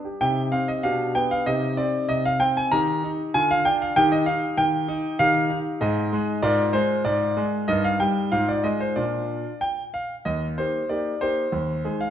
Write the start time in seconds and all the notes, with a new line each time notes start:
0.05 G4
0.21 C3 D#4 G4 G5
0.52 C4 F5
0.68 D#5
0.83 B2 D4 G4 F5
1.15 B3 G5
1.31 F5
1.46 C3 D#4 G4 D#5
1.77 C4 D5
2.09 C3 D#5
2.25 F5
2.40 C4 G5
2.57 G#5
2.72 D#3 D#4 G4 A#5
3.04 D#4
3.34 D3 F4 G#5
3.51 F5
3.65 D4 G5
3.82 F5
3.96 D#3 D#4 G4 G5
4.12 D#5
4.26 D#4 F5
4.57 D#3 G5
4.88 D#4
5.19 D#3 D#4 G4 F5
5.50 D#4
5.81 G#2 D#4 G#4 D#5
6.13 G#3
6.42 G#2 F4 A#4 D5
6.73 G#3 C5
7.05 G#2 D5
7.37 G#3
7.68 G2 D#4 A#4 D#5
7.84 F5
8.00 G3 G5
8.32 G#2 D#4 F4 F5
8.49 D5
8.64 G#3 D#5
8.80 C5
8.96 A#2 D4 F4 D5
9.61 G5
9.94 F5
10.25 D#2 D#5
10.58 A#3 D#4 G4 C5
10.89 A#3 D#4 G4 D5
11.21 A#3 D#4 G4 C5
11.52 D#2
11.84 G#3 D#4 G#4
12.01 F5